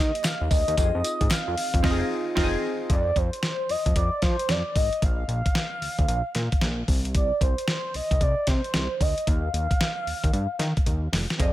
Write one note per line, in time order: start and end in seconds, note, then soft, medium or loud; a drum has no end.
0.00 0.12 D#3 loud
0.00 0.73 A#3 medium
0.00 0.73 D#4 medium
0.00 0.74 G4 medium
0.00 0.74 A#4 medium
0.00 0.26 D#5 loud
0.00 0.74 D#5 medium
0.15 closed hi-hat medium
0.24 0.50 F5 loud
0.24 snare loud
0.24 clap medium
0.24 closed hi-hat medium
0.24 tambourine medium
0.41 0.49 D#2 medium
0.51 0.65 D2 medium
0.51 0.75 D#5 medium
0.51 kick loud
0.51 open hi-hat medium
0.51 tambourine medium
0.68 0.76 D#2 loud
0.68 closed hi-hat medium
0.77 0.91 F2 loud
0.77 1.81 C4 medium
0.77 1.82 D#4 medium
0.77 1.82 F4 medium
0.77 0.86 G4 soft
0.77 1.82 D#5 medium
0.77 kick loud
0.77 closed hi-hat medium
0.77 tambourine medium
0.85 1.85 G#4 medium
0.95 1.02 F2 loud
1.04 closed hi-hat medium
1.04 tambourine medium
1.21 1.29 G#2 medium
1.21 kick loud
1.21 closed hi-hat medium
1.31 2.37 F5 loud
1.31 snare loud
1.31 clap medium
1.31 closed hi-hat medium
1.31 tambourine medium
1.48 1.55 F2 loud
1.57 open hi-hat medium
1.74 1.82 F2 medium
1.74 kick loud
1.74 closed hi-hat medium
1.82 2.03 F1 loud
1.82 2.02 C4 loud
1.82 2.03 D#4 loud
1.82 2.03 F4 loud
1.82 2.04 D#5 loud
1.82 kick loud
1.82 snare loud
1.82 crash medium
1.91 2.07 G#4 loud
2.35 2.56 F1 loud
2.35 2.55 C4 loud
2.35 2.56 D#4 loud
2.35 2.56 F4 loud
2.35 2.57 D#5 loud
2.35 kick loud
2.35 snare loud
2.35 crash medium
2.44 2.60 G#4 loud
2.90 3.12 F2 loud
2.90 3.19 D5 medium
2.90 kick loud
2.90 closed hi-hat medium
3.16 3.30 F2 loud
3.16 3.44 C5 medium
3.16 kick loud
3.16 closed hi-hat medium
3.33 closed hi-hat medium
3.43 3.72 C5 medium
3.43 snare loud
3.43 closed hi-hat medium
3.69 3.76 F2 soft
3.69 3.96 D#5 medium
3.69 open hi-hat medium
3.86 3.94 F2 medium
3.86 kick loud
3.86 closed hi-hat medium
3.96 4.10 F2 loud
3.96 4.21 D5 medium
3.96 kick medium
3.96 closed hi-hat medium
4.22 4.36 F3 loud
4.22 4.52 C5 loud
4.22 kick loud
4.22 snare medium
4.22 closed hi-hat medium
4.39 closed hi-hat medium
4.49 4.63 F2 medium
4.49 4.78 D5 loud
4.49 snare loud
4.49 closed hi-hat medium
4.76 4.90 G#1 medium
4.76 5.05 D#5 loud
4.76 kick loud
4.76 open hi-hat medium
4.93 closed hi-hat medium
5.02 5.24 A#1 loud
5.02 6.89 F5 loud
5.02 kick loud
5.02 closed hi-hat medium
5.28 5.42 A#1 loud
5.28 closed hi-hat medium
5.46 kick medium
5.46 closed hi-hat medium
5.55 snare loud
5.55 closed hi-hat medium
5.81 5.88 D2 soft
5.81 open hi-hat medium
5.99 6.07 D2 medium
5.99 kick medium
5.99 closed hi-hat medium
6.08 6.22 A#1 loud
6.08 closed hi-hat medium
6.35 6.49 A#2 loud
6.35 snare medium
6.35 closed hi-hat medium
6.52 kick medium
6.52 closed hi-hat medium
6.61 6.83 A#1 loud
6.61 snare loud
6.61 closed hi-hat medium
6.88 7.32 C2 medium
6.88 kick loud
6.88 open hi-hat medium
7.05 closed hi-hat medium
7.15 7.40 D5 medium
7.15 kick loud
7.15 closed hi-hat medium
7.41 7.55 C2 loud
7.41 7.67 C5 medium
7.41 kick loud
7.41 closed hi-hat medium
7.58 closed hi-hat medium
7.68 7.94 C5 medium
7.68 snare loud
7.68 closed hi-hat medium
7.94 8.01 C2 soft
7.94 8.24 D#5 medium
7.94 open hi-hat medium
8.11 8.19 C2 medium
8.11 kick loud
8.11 closed hi-hat medium
8.21 8.35 C2 medium
8.21 8.49 D5 medium
8.21 kick loud
8.21 closed hi-hat medium
8.47 8.61 C3 loud
8.47 9.03 C5 loud
8.47 kick loud
8.47 snare medium
8.47 closed hi-hat medium
8.64 closed hi-hat medium
8.74 8.88 C2 medium
8.74 snare loud
8.74 closed hi-hat medium
9.01 9.14 D2 medium
9.01 9.29 D#5 loud
9.01 kick loud
9.01 open hi-hat medium
9.18 closed hi-hat medium
9.27 9.49 D#2 loud
9.27 11.13 F5 loud
9.27 kick loud
9.27 closed hi-hat medium
9.53 9.67 D#2 loud
9.53 closed hi-hat medium
9.71 kick medium
9.71 closed hi-hat medium
9.81 snare loud
9.81 closed hi-hat medium
10.07 10.13 D#2 soft
10.07 open hi-hat medium
10.24 10.31 D#2 medium
10.24 kick medium
10.24 closed hi-hat medium
10.33 10.47 G2 loud
10.33 closed hi-hat medium
10.59 10.73 D#3 loud
10.59 snare medium
10.59 closed hi-hat medium
10.77 kick medium
10.77 closed hi-hat medium
10.86 11.08 D#2 medium
10.86 kick medium
10.86 closed hi-hat medium
11.12 11.26 F1 medium
11.12 snare medium
11.12 open hi-hat medium
11.30 snare medium
11.30 closed hi-hat medium
11.38 11.53 F2 loud
11.38 11.53 C4 medium
11.38 11.53 F4 medium
11.38 11.53 G#4 medium
11.38 11.53 D5 medium
11.38 11.53 D#5 medium
11.38 kick loud
11.38 closed hi-hat medium